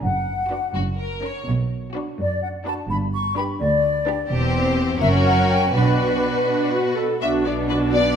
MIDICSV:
0, 0, Header, 1, 7, 480
1, 0, Start_track
1, 0, Key_signature, 2, "minor"
1, 0, Tempo, 483092
1, 24, Time_signature, 6, 3, 24, 8
1, 1944, Tempo, 471328
1, 4824, Tempo, 485437
1, 8162, End_track
2, 0, Start_track
2, 0, Title_t, "Flute section"
2, 0, Program_c, 0, 73
2, 23, Note_on_c, 0, 78, 46
2, 734, Note_off_c, 0, 78, 0
2, 2191, Note_on_c, 0, 74, 51
2, 2414, Note_off_c, 0, 74, 0
2, 2418, Note_on_c, 0, 78, 51
2, 2479, Note_off_c, 0, 78, 0
2, 2662, Note_on_c, 0, 81, 54
2, 2723, Note_off_c, 0, 81, 0
2, 2906, Note_on_c, 0, 83, 50
2, 2968, Note_off_c, 0, 83, 0
2, 3154, Note_on_c, 0, 85, 60
2, 3378, Note_on_c, 0, 83, 56
2, 3387, Note_off_c, 0, 85, 0
2, 3439, Note_off_c, 0, 83, 0
2, 3625, Note_on_c, 0, 74, 58
2, 4327, Note_off_c, 0, 74, 0
2, 5038, Note_on_c, 0, 76, 72
2, 5097, Note_off_c, 0, 76, 0
2, 5282, Note_on_c, 0, 78, 70
2, 5523, Note_on_c, 0, 79, 67
2, 5528, Note_off_c, 0, 78, 0
2, 5771, Note_off_c, 0, 79, 0
2, 5786, Note_on_c, 0, 71, 52
2, 6971, Note_off_c, 0, 71, 0
2, 8162, End_track
3, 0, Start_track
3, 0, Title_t, "Violin section"
3, 0, Program_c, 1, 48
3, 493, Note_on_c, 1, 71, 30
3, 679, Note_off_c, 1, 71, 0
3, 1218, Note_on_c, 1, 70, 33
3, 1401, Note_off_c, 1, 70, 0
3, 1934, Note_on_c, 1, 71, 35
3, 2120, Note_off_c, 1, 71, 0
3, 2661, Note_on_c, 1, 71, 35
3, 2842, Note_off_c, 1, 71, 0
3, 3380, Note_on_c, 1, 71, 42
3, 3564, Note_off_c, 1, 71, 0
3, 4087, Note_on_c, 1, 71, 45
3, 4273, Note_off_c, 1, 71, 0
3, 4325, Note_on_c, 1, 72, 51
3, 5012, Note_off_c, 1, 72, 0
3, 5052, Note_on_c, 1, 70, 53
3, 5765, Note_on_c, 1, 71, 40
3, 5782, Note_off_c, 1, 70, 0
3, 6998, Note_off_c, 1, 71, 0
3, 7933, Note_on_c, 1, 74, 61
3, 8158, Note_off_c, 1, 74, 0
3, 8162, End_track
4, 0, Start_track
4, 0, Title_t, "Violin section"
4, 0, Program_c, 2, 48
4, 498, Note_on_c, 2, 66, 33
4, 682, Note_off_c, 2, 66, 0
4, 735, Note_on_c, 2, 66, 38
4, 815, Note_off_c, 2, 66, 0
4, 981, Note_on_c, 2, 70, 40
4, 1220, Note_off_c, 2, 70, 0
4, 1228, Note_on_c, 2, 73, 38
4, 1467, Note_off_c, 2, 73, 0
4, 1933, Note_on_c, 2, 66, 38
4, 2119, Note_off_c, 2, 66, 0
4, 2666, Note_on_c, 2, 66, 38
4, 2845, Note_off_c, 2, 66, 0
4, 3393, Note_on_c, 2, 67, 41
4, 3571, Note_off_c, 2, 67, 0
4, 4097, Note_on_c, 2, 67, 47
4, 4278, Note_off_c, 2, 67, 0
4, 4330, Note_on_c, 2, 67, 47
4, 5014, Note_off_c, 2, 67, 0
4, 5052, Note_on_c, 2, 66, 52
4, 5763, Note_off_c, 2, 66, 0
4, 5775, Note_on_c, 2, 66, 39
4, 7003, Note_off_c, 2, 66, 0
4, 7223, Note_on_c, 2, 76, 54
4, 7302, Note_off_c, 2, 76, 0
4, 7465, Note_on_c, 2, 74, 42
4, 7544, Note_off_c, 2, 74, 0
4, 7701, Note_on_c, 2, 71, 45
4, 7780, Note_off_c, 2, 71, 0
4, 7921, Note_on_c, 2, 74, 58
4, 8162, Note_off_c, 2, 74, 0
4, 8162, End_track
5, 0, Start_track
5, 0, Title_t, "Viola section"
5, 0, Program_c, 3, 48
5, 504, Note_on_c, 3, 62, 35
5, 685, Note_off_c, 3, 62, 0
5, 1227, Note_on_c, 3, 61, 37
5, 1406, Note_off_c, 3, 61, 0
5, 1949, Note_on_c, 3, 62, 38
5, 2127, Note_off_c, 3, 62, 0
5, 2655, Note_on_c, 3, 62, 39
5, 2839, Note_off_c, 3, 62, 0
5, 3382, Note_on_c, 3, 62, 44
5, 3565, Note_off_c, 3, 62, 0
5, 4103, Note_on_c, 3, 62, 53
5, 4282, Note_off_c, 3, 62, 0
5, 4336, Note_on_c, 3, 60, 46
5, 5017, Note_off_c, 3, 60, 0
5, 5058, Note_on_c, 3, 61, 54
5, 5784, Note_off_c, 3, 61, 0
5, 5787, Note_on_c, 3, 62, 40
5, 6451, Note_off_c, 3, 62, 0
5, 6505, Note_on_c, 3, 62, 42
5, 6732, Note_off_c, 3, 62, 0
5, 6741, Note_on_c, 3, 66, 43
5, 6985, Note_on_c, 3, 69, 39
5, 6989, Note_off_c, 3, 66, 0
5, 7230, Note_off_c, 3, 69, 0
5, 7238, Note_on_c, 3, 62, 38
5, 7240, Note_on_c, 3, 66, 39
5, 7458, Note_off_c, 3, 62, 0
5, 7459, Note_off_c, 3, 66, 0
5, 7478, Note_on_c, 3, 62, 36
5, 7481, Note_on_c, 3, 59, 37
5, 7711, Note_off_c, 3, 62, 0
5, 7715, Note_off_c, 3, 59, 0
5, 7722, Note_on_c, 3, 62, 38
5, 7724, Note_on_c, 3, 66, 38
5, 7946, Note_off_c, 3, 62, 0
5, 7952, Note_on_c, 3, 59, 41
5, 7953, Note_off_c, 3, 66, 0
5, 7958, Note_on_c, 3, 62, 43
5, 8162, Note_off_c, 3, 59, 0
5, 8162, Note_off_c, 3, 62, 0
5, 8162, End_track
6, 0, Start_track
6, 0, Title_t, "Cello section"
6, 0, Program_c, 4, 48
6, 18, Note_on_c, 4, 42, 42
6, 599, Note_off_c, 4, 42, 0
6, 740, Note_on_c, 4, 42, 40
6, 1316, Note_off_c, 4, 42, 0
6, 1459, Note_on_c, 4, 47, 45
6, 2033, Note_off_c, 4, 47, 0
6, 2184, Note_on_c, 4, 42, 46
6, 2758, Note_off_c, 4, 42, 0
6, 2901, Note_on_c, 4, 43, 47
6, 3477, Note_off_c, 4, 43, 0
6, 3628, Note_on_c, 4, 38, 53
6, 4195, Note_off_c, 4, 38, 0
6, 4342, Note_on_c, 4, 40, 49
6, 5020, Note_off_c, 4, 40, 0
6, 5057, Note_on_c, 4, 42, 58
6, 5780, Note_on_c, 4, 47, 41
6, 5784, Note_off_c, 4, 42, 0
6, 7006, Note_off_c, 4, 47, 0
6, 7227, Note_on_c, 4, 47, 44
6, 8162, Note_off_c, 4, 47, 0
6, 8162, End_track
7, 0, Start_track
7, 0, Title_t, "Double bass section"
7, 0, Program_c, 5, 48
7, 17, Note_on_c, 5, 30, 43
7, 471, Note_off_c, 5, 30, 0
7, 747, Note_on_c, 5, 30, 37
7, 1194, Note_off_c, 5, 30, 0
7, 1462, Note_on_c, 5, 35, 47
7, 1907, Note_off_c, 5, 35, 0
7, 2900, Note_on_c, 5, 31, 48
7, 3351, Note_off_c, 5, 31, 0
7, 4345, Note_on_c, 5, 28, 51
7, 4791, Note_off_c, 5, 28, 0
7, 5065, Note_on_c, 5, 30, 51
7, 5511, Note_off_c, 5, 30, 0
7, 5783, Note_on_c, 5, 35, 43
7, 6235, Note_off_c, 5, 35, 0
7, 7240, Note_on_c, 5, 35, 43
7, 8162, Note_off_c, 5, 35, 0
7, 8162, End_track
0, 0, End_of_file